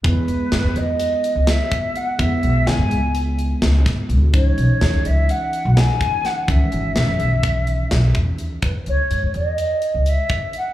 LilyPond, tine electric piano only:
\new Staff \with { instrumentName = "Tine electric piano" } { \time 9/8 \key e \major \tempo 4. = 84 <gis b e'>1~ <gis b e'>8 | <gis b e'>1~ <gis b e'>8 | <e cis' dis'>1~ <e cis' dis'>8 | <dis e cis'>1~ <dis e cis'>8 |
r1 r8 | }